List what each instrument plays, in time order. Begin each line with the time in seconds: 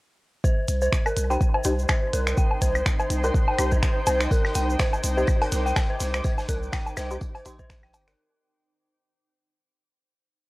0.44 ambient pad D#4, synth bell C5, synth texture C5, kick, shaker
0.68 sub bass C2, closed hi-hat, shaker
0.77 ambient pad C5
0.81 synth bell C5, shaker
0.92 finger snap, kick, shaker
1.03 synth bell A#4, ambient pad G5 C6, high woodblock, low woodblock, shaker
1.17 sub bass C2, closed hi-hat, shaker
1.30 synth stab D#4 G4 C5, synth bell G5, shaker
1.41 kick, shaker
1.54 synth bell C5, low woodblock
1.64 sub bass C2, synth stab D#4 G4 C5, closed hi-hat, shaker
1.79 shaker
1.89 synth bell C5, finger snap, kick, high woodblock, low woodblock, shaker
2.13 sub bass C2, synth bell A#4, closed hi-hat, shaker
2.27 finger snap, shaker
2.37 synth bell G5, kick, shaker
2.51 low woodblock
2.62 sub bass C2, synth bell C5, kick, closed hi-hat, shaker
2.75 high woodblock, shaker
2.86 finger snap, kick, shaker
2.99 synth bell C5, low woodblock, shaker
3.10 sub bass C2, closed hi-hat, shaker
3.24 synth stab D#4 G4 C5, synth bell A#4, shaker
3.34 kick, shaker
3.48 synth bell G5, low woodblock
3.58 sub bass C2, synth stab D#4 G4 C5, closed hi-hat, high woodblock, shaker
3.72 synth bell C5, kick, shaker
3.83 finger snap, kick, shaker
4.07 sub bass C2, synth bell C5, closed hi-hat, low woodblock, shaker
4.21 finger snap, shaker
4.29 synth bell A#4, ambient pad D6, kick, tambourine, shaker
4.45 snare, high woodblock
4.55 sub bass C2, synth bell G5, closed hi-hat, tambourine, shaker
4.70 shaker
4.79 synth bell C5, finger snap, kick, snare, tambourine, shaker
4.93 low woodblock, shaker
5.04 sub bass C2, closed hi-hat, tambourine, shaker
5.17 synth stab D#4 G4 C5, synth bell C5, shaker
5.27 kick, tambourine, high woodblock, shaker
5.41 synth bell A#4, closed hi-hat, low woodblock
5.51 sub bass C2, snare, closed hi-hat, tambourine, shaker
5.66 synth bell G5, shaker
5.76 finger snap, kick, snare, tambourine, low woodblock, shaker
5.90 synth bell C5
6.00 sub bass C2, snare, closed hi-hat, tambourine, shaker
6.14 finger snap, high woodblock, shaker
6.24 synth bell C5, kick, tambourine, shaker
6.38 snare, low woodblock, shaker
6.49 sub bass C2, synth bell A#4, kick, closed hi-hat, tambourine, shaker
6.63 shaker
6.73 synth bell G5, finger snap, kick, snare, tambourine, shaker
6.86 low woodblock, shaker
6.97 sub bass C2, synth bell C5, snare, closed hi-hat, tambourine, high woodblock, shaker
7.11 synth stab D#4 G4 C5, shaker
7.21 kick, tambourine, shaker
7.35 synth bell C5, closed hi-hat, low woodblock
7.45 sub bass A#1, synth stab D#4 G4 C5, synth bell C6, closed hi-hat, tambourine, shaker
7.59 synth bell C5, kick, shaker
7.70 finger snap, kick, snare, tambourine, shaker
7.83 synth bell G5, snare, high woodblock
7.93 sub bass G1, closed hi-hat, tambourine, low woodblock, shaker
8.08 synth bell A#4, finger snap, snare, closed hi-hat, shaker